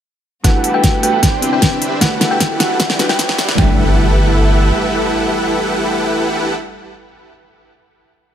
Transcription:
0.43 G1 G3 A3 B3 D4 E4 F#4 G4 A4 B4 F#5, kick, snare, closed hi-hat, riser
0.64 closed hi-hat
0.73 A3 D4 E4 F#4 G4 A4 B4 E5 G5
0.84 kick, snare, closed hi-hat
0.94 E4 G4 A4 B4 F#5
1.02 A3 D4 E4 F#4 B4 G5, closed hi-hat
1.22 C2 C3 D4 E4 G4 B4 C5 G5, kick, snare, closed hi-hat
1.41 C4 D4 E4 G4 B4, closed hi-hat
1.52 D4 G4 B4 C5 E5 G5
1.62 kick, snare, closed hi-hat
1.71 C4 D4 E4 G4 B4 C5 E5
1.82 closed hi-hat
2.00 G3 A3 B3 D4 E4 F#4 G4 A4 B4 F#5, kick, snare, closed hi-hat
2.21 snare, closed hi-hat
2.30 A3 D4 E4 F#4 G4 A4 B4 E5 G5
2.40 kick, snare, closed hi-hat
2.51 E4 G4 A4 B4 F#5
2.59 A3 D4 E4 F#4 B4 F#5, snare, closed hi-hat
2.79 E1 E3 D4 E4 F#4 G4 B4 D5 G5, kick, snare, closed hi-hat
2.90 snare
2.99 G3 D4 E4 F#4 B4, snare, closed hi-hat
3.09 E4 G4 B4 D5 F#5 G5, snare
3.19 kick, snare, closed hi-hat
3.28 G3 D4 E4 F#4 G4 B4 D5 F#5, snare
3.38 snare, closed hi-hat
3.49 snare
3.55 G1 G3 A3 D4 E4 G4 A4 B4 E5 F#5 G5 A5, kick, snare, impact
3.60 B4 E5

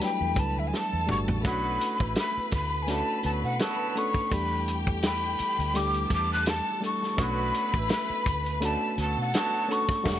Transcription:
Already playing: E3 B3 D4 E4 F#4 A4 B4 B5
0.00 F#3 G3 A3 D4 G5, snare, closed hi-hat
0.21 E2
0.36 C#2 A5, kick, closed hi-hat
0.57 D2 E5
0.67 G#5
0.73 A4 A5, snare
0.93 E2
1.07 G1 G3 A3 D4 F#4 C#6, mid tom
1.28 A1, floor tom
1.43 B1 D3 F#3 A3 B3 C#4 D4 F#4 B4 B5, kick, closed hi-hat
1.81 closed hi-hat
2.00 A1 B2 E3 A3 E4, kick
2.15 B5, snare, closed hi-hat
2.38 muted fingered electric bass stroke
2.51 D2 B5, kick, closed hi-hat
2.82 G#5
2.87 B2 D3 A3 C#4 D4 F#4 A5, snare, closed hi-hat
3.23 D2 D3 F#3 B3 F#4 A5, closed hi-hat
3.44 B2 F#5
3.59 D3 F#3 B3 F#4 A5, snare, closed hi-hat
3.95 A3 C#4 D4 A4 C#6, closed hi-hat
4.14 kick
4.31 E2 E3 G3 A3 D4 G4 A4 G5 B5, kick, closed hi-hat
4.68 closed hi-hat
4.87 kick
5.03 B5, snare, closed hi-hat
5.39 muted fingered electric bass stroke, closed hi-hat
5.59 D2, closed hi-hat
5.74 G3 A3 D4 G4 D6, snare, closed hi-hat
5.94 closed hi-hat
6.10 E2 A4 A5, kick, closed hi-hat
6.14 D6
6.33 F#6
6.46 A5, snare, closed hi-hat
6.81 G3 A3 D4 A4, closed hi-hat
6.86 C#6
7.03 snare
7.17 B1 D3 F#3 A3 B3 C#4 D4 F#4 B4 B5, kick, closed hi-hat
7.23 B5
7.54 closed hi-hat
7.74 A1 B2 E3 A3 E4, kick
7.89 B5, snare, closed hi-hat
8.10 muted fingered electric bass stroke
8.26 D2, kick, closed hi-hat
8.46 closed hi-hat
8.60 B2 D3 A3 C#4 D4 F#4, closed hi-hat
8.65 A5
8.98 D2 D3 F#3 B3 F#4 A4 A5, closed hi-hat
9.18 B2 F#5
9.34 D3 F#3 B3 F#4, snare, closed hi-hat
9.38 A5
9.68 A3 C#4 D4 A4, closed hi-hat
9.72 C#6
9.89 kick, snare
10.04 E1 E3 F#3 A3 D4 F#4 G4 A4 F#5, kick, snare, crash
10.10 G3

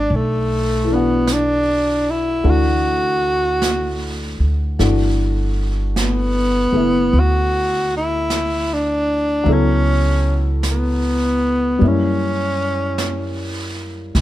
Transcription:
Already playing: D4
0.10 B1, brush sweep
0.16 A3
0.84 E3 A3
0.92 B3 D4 F#4
1.27 brush sweep, snare, hi-hat pedal
1.32 D4
2.10 E4
2.43 D2 E3 A3 D4 F#4, brush sweep
2.50 F#4
3.62 brush sweep, snare, hi-hat pedal
4.40 D2
4.79 G1 E3 A3 D4 F#4, brush sweep, snare
5.96 brush sweep, snare, hi-hat pedal
6.01 B3
6.73 F#1 A3 B3 E4
7.13 D2, brush sweep
7.20 F#4
7.97 E4
8.30 brush sweep, snare, hi-hat pedal
8.73 D4
9.44 C#2 F#3 B3 E4, brush sweep
9.49 C#4 A4
10.63 brush sweep, snare, hi-hat pedal
10.71 B3
11.79 F#2 G3 A#3 C#4, brush sweep
11.84 C#4 E4
12.98 brush sweep, snare, hi-hat pedal
14.15 B1, brush sweep, snare

